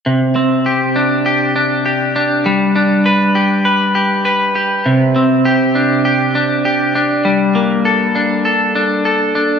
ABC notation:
X:1
M:4/4
L:1/8
Q:1/4=100
K:Gmix
V:1 name="Clean electric guitar"
C, C G D G D G D | G, D B G B G B G | C, C G D G D G D | G, _B, A D A D A D |]